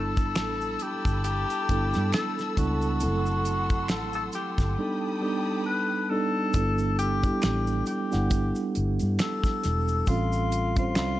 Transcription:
0.00 0.38 G1 medium
0.00 0.91 G3 medium
0.00 0.91 B3 medium
0.00 0.92 D4 medium
0.00 0.92 E4 medium
0.00 0.84 A4 loud
0.00 0.92 A4 medium
0.00 4.74 A4 medium
0.00 2.98 A5 medium
0.00 2.98 B5 medium
0.00 4.74 E6 medium
0.17 kick loud
0.17 maracas soft
0.35 0.75 A1 medium
0.35 finger snap medium
0.35 snare loud
0.35 closed hi-hat medium
0.35 maracas medium
0.61 maracas soft
0.79 1.24 G4 medium
0.79 closed hi-hat medium
1.05 1.44 G1 medium
1.05 kick medium
1.05 maracas soft
1.24 2.09 G4 loud
1.24 closed hi-hat medium
1.24 maracas medium
1.50 closed hi-hat soft
1.50 maracas soft
1.69 1.91 G1 medium
1.69 2.42 G3 medium
1.69 2.43 B3 medium
1.69 2.43 D4 medium
1.69 2.43 E4 medium
1.69 2.43 A4 medium
1.69 kick medium
1.69 closed hi-hat medium
1.94 2.12 G2 medium
1.94 snare soft
1.94 maracas soft
2.13 2.54 A4 medium
2.13 finger snap medium
2.13 snare loud
2.13 closed hi-hat medium
2.13 maracas medium
2.39 snare soft
2.39 maracas soft
2.57 3.05 C#2 medium
2.57 2.94 G3 medium
2.57 2.94 B3 medium
2.57 2.94 D4 medium
2.57 2.94 E4 medium
2.57 3.91 F#4 medium
2.57 2.95 A4 medium
2.57 kick medium
2.57 closed hi-hat medium
2.57 maracas soft
2.82 maracas soft
3.00 3.92 F#1 medium
3.00 4.43 F#3 medium
3.00 4.43 A3 medium
3.00 4.44 C4 medium
3.00 4.44 E4 medium
3.00 4.44 A4 medium
3.00 4.75 F#5 medium
3.00 4.76 C6 medium
3.00 closed hi-hat medium
3.00 maracas medium
3.26 maracas soft
3.45 closed hi-hat medium
3.45 maracas soft
3.70 kick loud
3.70 maracas soft
3.88 4.28 A1 medium
3.88 4.14 A4 medium
3.88 finger snap medium
3.88 snare medium
3.88 closed hi-hat medium
3.88 maracas medium
4.13 4.23 A4 medium
4.13 maracas soft
4.32 5.18 G4 medium
4.32 closed hi-hat medium
4.32 maracas soft
4.58 4.75 G1 medium
4.58 kick medium
4.58 snare soft
4.58 maracas soft
4.78 5.14 G3 medium
4.78 5.15 B3 medium
4.78 5.15 D4 medium
4.78 5.15 D#4 medium
4.78 6.53 A4 medium
4.78 5.16 A4 medium
4.78 6.53 G5 medium
4.78 6.52 B5 medium
4.78 6.53 D#6 medium
5.21 5.95 G3 medium
5.21 5.95 B3 medium
5.21 5.95 D4 medium
5.21 5.96 D#4 medium
5.21 5.63 G4 medium
5.21 5.96 A4 medium
5.66 6.12 B4 medium
6.10 6.47 G3 medium
6.10 6.47 B3 medium
6.10 6.47 D4 medium
6.10 6.47 D#4 medium
6.10 6.98 A4 medium
6.10 6.48 A4 medium
6.53 7.30 G1 loud
6.53 7.08 G3 medium
6.53 7.08 B3 medium
6.53 7.08 D4 medium
6.53 7.09 E4 medium
6.53 7.09 A4 medium
6.53 kick loud
6.53 closed hi-hat medium
6.53 maracas medium
6.78 maracas soft
6.99 7.83 G4 medium
6.99 closed hi-hat medium
6.99 maracas soft
7.23 7.91 G3 medium
7.23 7.92 B3 medium
7.23 7.92 D4 medium
7.23 7.92 E4 medium
7.23 7.93 G4 medium
7.23 kick loud
7.23 closed hi-hat soft
7.23 maracas soft
7.42 7.81 A1 medium
7.42 finger snap medium
7.42 snare loud
7.42 closed hi-hat medium
7.42 maracas medium
7.67 maracas soft
7.86 8.71 G4 medium
7.86 closed hi-hat medium
7.86 maracas soft
8.11 8.51 G1 medium
8.11 9.51 G3 medium
8.11 9.51 B3 medium
8.11 9.52 D4 medium
8.11 9.52 E4 medium
8.11 9.52 F#5 medium
8.11 snare soft
8.11 closed hi-hat soft
8.11 maracas soft
8.30 kick medium
8.30 closed hi-hat medium
8.30 maracas medium
8.55 maracas soft
8.75 8.98 G1 medium
8.75 closed hi-hat medium
8.99 9.17 G2 medium
8.99 closed hi-hat soft
8.99 maracas soft
9.19 10.09 A4 medium
9.19 finger snap medium
9.19 snare medium
9.19 closed hi-hat medium
9.19 maracas medium
9.44 kick medium
9.44 snare soft
9.44 maracas soft
9.64 10.02 E1 medium
9.64 snare soft
9.64 closed hi-hat medium
9.64 maracas soft
9.88 maracas soft
10.07 10.98 A1 loud
10.07 10.61 G3 medium
10.07 10.62 C4 medium
10.07 10.62 C#4 medium
10.07 10.77 F4 medium
10.07 10.63 F4 medium
10.07 10.63 A4 medium
10.07 kick loud
10.07 closed hi-hat medium
10.07 maracas medium
10.32 maracas soft
10.52 closed hi-hat medium
10.52 maracas medium
10.76 11.20 G3 medium
10.76 11.20 C4 medium
10.76 11.20 C#4 medium
10.76 11.20 F4 medium
10.76 11.20 C5 medium
10.76 kick loud
10.76 closed hi-hat soft
10.76 maracas soft
10.95 11.20 C2 loud
10.95 finger snap medium
10.95 snare loud
10.95 closed hi-hat medium
10.95 maracas medium

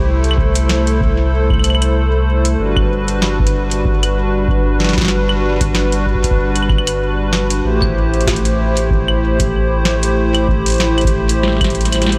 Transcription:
0.00 2.56 C2 medium
0.00 2.55 A3 medium
0.00 2.55 E4 medium
0.00 2.55 C5 medium
0.06 2.56 A4 medium
0.24 closed hi-hat soft
0.31 claves medium
0.38 kick loud
0.55 closed hi-hat medium
0.69 snare loud
0.87 closed hi-hat medium
1.01 kick loud
1.50 kick loud
1.50 claves soft
1.54 claves soft
1.59 claves soft
1.64 closed hi-hat medium
1.64 claves medium
1.70 claves medium
1.75 claves medium
1.82 closed hi-hat medium
1.82 claves soft
2.45 closed hi-hat medium
2.59 7.61 G1 medium
2.59 7.60 G3 medium
2.59 7.60 D4 medium
2.59 7.60 F#4 medium
2.59 7.60 B4 medium
2.77 kick loud
2.77 claves medium
3.08 closed hi-hat medium
3.22 snare loud
3.40 kick loud
3.47 closed hi-hat soft
3.71 closed hi-hat medium
3.85 kick loud
4.03 closed hi-hat soft
4.03 claves medium
4.48 kick loud
4.80 snare medium
4.84 snare medium
4.89 snare medium
4.93 snare medium
4.98 kick loud
4.98 snare medium
5.01 snare medium
5.05 snare medium
5.08 snare loud
5.29 claves medium
5.61 kick loud
5.61 closed hi-hat medium
5.75 snare loud
5.92 closed hi-hat soft
6.06 kick soft
6.15 kick medium
6.24 kick medium
6.24 closed hi-hat medium
6.31 kick medium
6.56 closed hi-hat soft
6.56 claves soft
6.63 claves soft
6.69 kick loud
6.69 claves medium
6.78 claves medium
6.87 closed hi-hat medium
6.87 claves medium
7.33 snare loud
7.50 closed hi-hat medium
7.64 12.18 A1 medium
7.64 12.18 A3 medium
7.64 12.18 E4 medium
7.64 12.18 G4 medium
7.64 12.18 C5 medium
7.82 kick loud
7.82 claves medium
8.14 closed hi-hat soft
8.21 closed hi-hat soft
8.27 kick loud
8.27 snare loud
8.27 closed hi-hat soft
8.36 closed hi-hat medium
8.45 closed hi-hat soft
8.77 closed hi-hat medium
8.90 kick loud
9.08 claves medium
9.40 kick loud
9.40 closed hi-hat medium
9.85 snare loud
10.03 closed hi-hat medium
10.35 closed hi-hat soft
10.35 claves medium
10.48 kick loud
10.66 closed hi-hat medium
10.68 closed hi-hat soft
10.70 closed hi-hat soft
10.72 closed hi-hat soft
10.74 closed hi-hat soft
10.76 closed hi-hat soft
10.78 snare loud
10.78 closed hi-hat soft
10.98 closed hi-hat soft
10.98 claves medium
11.01 kick loud
11.01 closed hi-hat soft
11.07 closed hi-hat soft
11.29 closed hi-hat medium
11.43 snare medium
11.48 snare medium
11.52 snare soft
11.57 snare soft
11.61 kick loud
11.61 snare medium
11.61 closed hi-hat soft
11.61 claves medium
11.64 closed hi-hat soft
11.70 closed hi-hat soft
11.75 closed hi-hat soft
11.81 closed hi-hat soft
11.85 snare soft
11.85 closed hi-hat soft
11.92 snare soft
11.92 closed hi-hat medium
11.92 claves medium
11.96 claves soft
12.02 snare medium
12.02 closed hi-hat soft
12.02 claves soft
12.06 snare medium
12.06 claves soft
12.09 snare medium
12.09 closed hi-hat soft
12.09 claves soft

